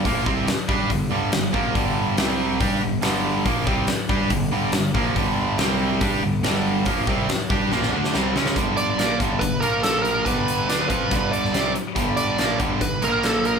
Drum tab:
HH |o---o---o---o---|o---o---o---o---|o---o---o---o---|o---o---o---o---|
SD |----o-------o---|----o-------oo--|----o-------o---|----o-------oo--|
BD |o-o---o-o-----o-|o-------o-------|o-o---o-o-----o-|o-------o-------|

HH |o---o-----------|x-x-x-x-x-x-x-x-|x-x-x-x-x-x-x-x-|x-x-x-x-x-x-x-x-|
SD |----o---oo-oo-oo|----o-------o---|----o------oo---|----o-------o---|
BD |o-o---o---------|o-----o-o-------|o-----o-o-------|o-----o-o-------|